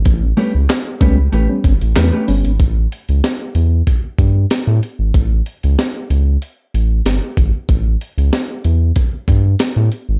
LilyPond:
<<
  \new Staff \with { instrumentName = "Clean electric guitar" } { \time 4/4 \key a \mixolydian \tempo 4 = 94 r8 <a cis' g' b'>16 r8. <a cis' g' b'>16 r16 <a cis' g' b'>16 r8. <a cis' g' b'>16 <a cis' g' b'>16 r8 | r1 | r1 | r1 | }
  \new Staff \with { instrumentName = "Reed electric piano" } { \time 4/4 \key a \mixolydian <a, e>16 <b cis'>16 <g b cis'>16 r8. <g b cis'>16 r16 <a, e>16 <g b cis'>16 <b cis'>16 r16 <a, e>16 r16 <g b cis'>16 <b cis'>16 | r1 | r1 | r1 | }
  \new Staff \with { instrumentName = "Analog synth bass" } { \clef bass \time 4/4 \key a \mixolydian a,,8 r16 cis,16 r8 cis,8 a,,16 r16 g,,16 a,,16 e,16 r16 g,,16 gis,,16 | a,,8 r16 cis,16 r8 e,8 r8 g,8 r16 a,16 r16 gis,,16 | a,,8 r16 cis,16 r8 cis,8 r8 a,,8 g,,16 r16 gis,,16 r16 | a,,8 r16 cis,16 r8 e,8 r8 g,8 r16 a,16 r16 gis,,16 | }
  \new DrumStaff \with { instrumentName = "Drums" } \drummode { \time 4/4 <hh bd>8 hho8 <hc hh sn>8 <hh bd>8 hh8 <hh bd>16 hh16 <hc hh sn>8 hho16 hh16 | <hh bd>8 hh16 hh16 <hh sn>8 hh8 <hh bd>8 <hh bd>8 <hh sn>8 hh8 | <hh bd>8 hh16 hh16 <hh sn>8 hh8 hh8 hh8 <hh sn>8 <hh bd>8 | <hh bd>8 hh16 hh16 <hh sn>8 hh8 <hh bd>8 <hh bd>8 <hh sn>8 hh8 | }
>>